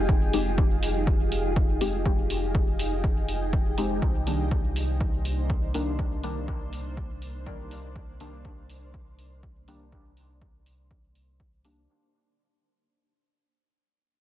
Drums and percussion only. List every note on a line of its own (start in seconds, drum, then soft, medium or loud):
0.09 kick loud
0.33 open hi-hat medium
0.58 kick loud
0.83 open hi-hat medium
1.07 kick loud
1.32 open hi-hat medium
1.56 kick loud
1.81 open hi-hat medium
2.06 kick loud
2.30 open hi-hat medium
2.55 kick loud
2.79 open hi-hat medium
3.04 kick loud
3.29 open hi-hat medium
3.53 kick loud
3.78 open hi-hat medium
4.02 kick loud
4.27 open hi-hat medium
4.51 kick loud
4.76 open hi-hat medium
5.01 kick loud
5.25 open hi-hat medium
5.50 kick loud
5.74 open hi-hat medium
5.99 kick loud
6.24 open hi-hat medium
6.48 kick loud
6.73 open hi-hat medium
6.97 kick loud
7.22 open hi-hat medium
7.47 kick loud
7.71 open hi-hat medium
7.96 kick loud
8.20 open hi-hat medium
8.45 kick loud
8.69 open hi-hat medium
8.94 kick loud
9.19 open hi-hat medium
9.43 kick loud
9.68 open hi-hat medium
9.92 kick loud
10.17 open hi-hat medium
10.42 kick loud
10.66 open hi-hat medium
10.91 kick loud
11.15 open hi-hat medium
11.40 kick loud
11.65 open hi-hat medium